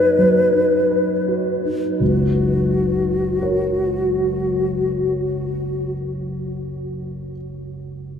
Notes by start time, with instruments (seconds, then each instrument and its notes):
Already playing: grand piano F#2 F#3 D#4 F#4 B4, flute B4
0.19 grand piano F#3
0.54 grand piano D#4
0.91 grand piano B4
1.28 grand piano F#4
1.65 grand piano D#4
1.99 grand piano F#1 C#2, flute F#4
3.40 grand piano F#4 A#4 C#5